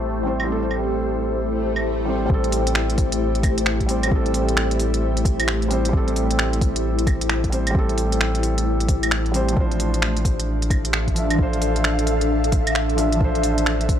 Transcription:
0.00 2.28 A1 medium
0.00 0.23 G3 medium
0.00 2.31 A3 medium
0.00 9.57 A3 medium
0.00 0.25 C4 medium
0.00 9.57 E4 medium
0.00 10.99 G4 medium
0.00 0.25 A4 medium
0.00 2.31 A4 medium
0.00 0.27 C5 medium
0.00 10.92 C5 medium
0.23 0.42 G3 medium
0.23 0.46 C4 medium
0.23 0.47 C5 medium
0.40 claves medium
0.44 2.03 G3 medium
0.44 2.05 C4 medium
0.52 2.07 A4 medium
0.71 claves soft
1.39 swell medium
1.76 claves soft
2.05 2.24 G3 medium
2.05 2.28 C4 medium
2.05 2.29 C5 medium
2.26 9.55 A1 medium
2.26 3.85 G3 medium
2.26 3.87 C4 medium
2.26 kick loud
2.34 3.89 A4 loud
2.44 closed hi-hat soft
2.52 open hi-hat medium
2.67 closed hi-hat medium
2.75 finger snap loud
2.90 closed hi-hat soft
2.98 kick loud
2.98 open hi-hat medium
3.12 closed hi-hat medium
3.35 closed hi-hat soft
3.43 kick loud
3.43 open hi-hat medium
3.43 claves soft
3.58 closed hi-hat medium
3.66 finger snap loud
3.80 kick medium
3.80 closed hi-hat soft
3.86 4.06 G3 medium
3.86 4.09 C4 medium
3.86 open hi-hat medium
3.90 4.10 C5 medium
4.03 closed hi-hat medium
4.03 claves medium
4.07 5.66 G3 medium
4.11 5.69 C4 medium
4.11 5.70 A4 medium
4.11 kick loud
4.26 closed hi-hat soft
4.34 open hi-hat medium
4.49 closed hi-hat medium
4.57 finger snap loud
4.71 closed hi-hat soft
4.80 open hi-hat medium
4.94 closed hi-hat medium
5.17 closed hi-hat soft
5.25 kick loud
5.25 open hi-hat medium
5.40 closed hi-hat medium
5.40 claves medium
5.48 finger snap loud
5.62 closed hi-hat soft
5.68 5.88 G3 medium
5.68 5.91 C4 medium
5.68 5.92 C5 medium
5.68 open hi-hat medium
5.85 7.48 G3 medium
5.85 closed hi-hat medium
5.93 7.50 C4 medium
5.93 kick loud
5.97 7.52 A4 loud
6.08 closed hi-hat soft
6.16 open hi-hat medium
6.31 closed hi-hat medium
6.39 finger snap loud
6.53 closed hi-hat soft
6.61 kick loud
6.61 open hi-hat medium
6.76 closed hi-hat medium
6.99 closed hi-hat soft
7.07 kick loud
7.07 open hi-hat medium
7.07 claves soft
7.21 closed hi-hat medium
7.29 finger snap loud
7.44 kick medium
7.44 closed hi-hat soft
7.50 7.69 G3 medium
7.50 7.73 C4 medium
7.50 open hi-hat medium
7.54 7.74 C5 medium
7.67 9.30 G3 medium
7.67 closed hi-hat medium
7.67 claves medium
7.75 9.32 C4 medium
7.75 kick loud
7.79 9.34 A4 loud
7.89 closed hi-hat soft
7.98 open hi-hat medium
8.12 closed hi-hat medium
8.21 finger snap loud
8.35 closed hi-hat soft
8.43 open hi-hat medium
8.58 closed hi-hat medium
8.80 closed hi-hat soft
8.88 kick loud
8.88 open hi-hat medium
9.03 closed hi-hat medium
9.03 claves medium
9.11 finger snap loud
9.26 closed hi-hat soft
9.32 9.54 G3 medium
9.32 9.55 C4 medium
9.32 9.56 C5 medium
9.32 open hi-hat medium
9.49 11.12 F3 medium
9.49 closed hi-hat medium
9.56 13.99 A1 medium
9.56 11.14 D4 medium
9.56 13.99 D4 medium
9.56 kick loud
9.60 11.16 C5 medium
9.72 closed hi-hat soft
9.80 13.99 E5 medium
9.80 open hi-hat medium
9.94 13.99 A4 medium
9.94 closed hi-hat medium
10.02 finger snap loud
10.17 closed hi-hat soft
10.25 13.73 F5 medium
10.25 kick loud
10.25 open hi-hat medium
10.40 closed hi-hat medium
10.62 closed hi-hat soft
10.70 kick loud
10.70 open hi-hat medium
10.70 claves soft
10.85 closed hi-hat medium
10.93 finger snap loud
11.08 kick medium
11.08 closed hi-hat soft
11.14 11.33 F3 medium
11.14 11.37 D4 medium
11.14 11.38 E5 medium
11.14 open hi-hat medium
11.30 closed hi-hat medium
11.30 claves medium
11.34 12.94 F3 medium
11.39 12.96 D4 medium
11.39 12.98 C5 loud
11.39 kick loud
11.53 closed hi-hat soft
11.62 open hi-hat medium
11.76 closed hi-hat soft
11.84 finger snap loud
11.99 closed hi-hat soft
12.07 open hi-hat medium
12.21 closed hi-hat medium
12.44 closed hi-hat soft
12.52 kick loud
12.52 open hi-hat medium
12.67 closed hi-hat medium
12.67 claves medium
12.75 finger snap loud
12.89 closed hi-hat soft
12.95 13.15 F3 medium
12.95 13.18 D4 medium
12.95 open hi-hat medium
12.99 13.19 E5 medium
13.12 13.99 F3 medium
13.12 closed hi-hat medium
13.20 13.99 D4 medium
13.20 kick loud
13.24 13.99 C5 loud
13.35 closed hi-hat soft
13.43 open hi-hat medium
13.58 13.99 G5 medium
13.58 closed hi-hat medium
13.66 finger snap loud
13.81 closed hi-hat soft
13.89 kick loud
13.89 open hi-hat medium

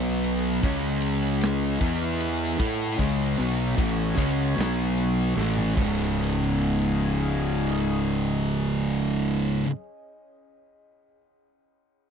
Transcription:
0.00 0.59 B1 loud
0.00 0.61 B2 loud
0.00 0.62 F#3 loud
0.00 0.62 B3 loud
0.24 ride medium
0.63 1.77 C#2 loud
0.63 1.79 C#3 medium
0.63 1.79 G#3 loud
0.63 1.80 C#4 loud
0.63 kick loud
0.63 ride loud
1.02 ride medium
1.41 snare loud
1.41 ride loud
1.80 2.55 E2 medium
1.80 2.58 E3 medium
1.80 2.58 B3 loud
1.80 2.58 E4 loud
1.80 kick loud
1.80 ride medium
2.20 ride loud
2.58 2.96 A2 loud
2.58 2.97 A3 medium
2.58 5.33 B3 medium
2.58 2.97 E4 medium
2.58 5.33 F#4 medium
2.58 2.98 A4 loud
2.58 5.33 C#5 loud
2.58 kick loud
2.58 ride medium
2.99 3.35 C#2 loud
2.99 3.37 C#3 medium
2.99 3.37 G#3 loud
2.99 3.37 C#4 loud
2.99 kick loud
2.99 ride loud
3.38 3.75 B1 loud
3.38 3.76 B2 medium
3.38 3.76 F#3 loud
3.38 3.77 B3 loud
3.38 ride medium
3.77 4.14 A1 medium
3.77 4.15 A2 medium
3.77 4.16 E3 loud
3.77 4.16 A3 loud
3.77 kick loud
3.77 ride loud
4.17 4.54 C#2 medium
4.17 4.55 C#3 medium
4.17 4.55 G#3 loud
4.17 4.56 C#4 loud
4.17 kick loud
4.17 ride medium
4.57 5.33 B1 medium
4.57 5.35 B2 medium
4.57 5.36 F#3 medium
4.57 5.36 B3 loud
4.57 snare loud
4.57 ride loud
4.98 ride medium
5.20 snare soft
5.36 5.74 A1 loud
5.36 5.75 A2 medium
5.36 5.77 E3 loud
5.36 5.77 A3 loud
5.40 snare medium
5.58 mid tom medium
5.75 9.61 C#1 loud
5.75 9.64 C#2 loud
5.75 9.66 G#2 medium
5.75 9.68 C#3 loud
5.75 9.61 C#4 medium
5.75 9.62 G#4 medium
5.75 9.62 D#5 medium
5.75 kick loud
5.75 crash medium

